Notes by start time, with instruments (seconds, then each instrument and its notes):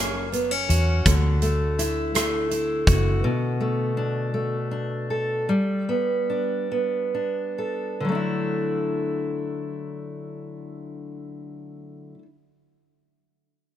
Already playing: fingered electric bass F#1, steel-string acoustic guitar F#2 A#3 C#4
0.32 steel-string acoustic guitar B3, closed hi-hat
0.51 steel-string acoustic guitar C#4
0.69 fingered electric bass E2, steel-string acoustic guitar F#4, closed hi-hat
1.05 fingered electric bass D2, steel-string acoustic guitar D3, kick, closed hi-hat
1.42 steel-string acoustic guitar A3, closed hi-hat
1.79 steel-string acoustic guitar E4, cross-stick, closed hi-hat
2.15 steel-string acoustic guitar A3, cross-stick, closed hi-hat
2.51 steel-string acoustic guitar E4, closed hi-hat
2.87 fingered electric bass F#1, steel-string acoustic guitar F#4, kick, closed hi-hat
3.24 steel-string acoustic guitar B2
3.60 steel-string acoustic guitar A3
3.97 steel-string acoustic guitar D4
4.34 steel-string acoustic guitar A3
4.71 steel-string acoustic guitar D4
5.10 steel-string acoustic guitar A4
5.49 steel-string acoustic guitar G3
5.89 steel-string acoustic guitar B3
6.30 steel-string acoustic guitar D4
6.71 steel-string acoustic guitar B3
7.14 steel-string acoustic guitar D4
7.58 steel-string acoustic guitar A4
8.00 steel-string acoustic guitar D3
8.05 steel-string acoustic guitar F#3 A3
8.12 steel-string acoustic guitar D4 E4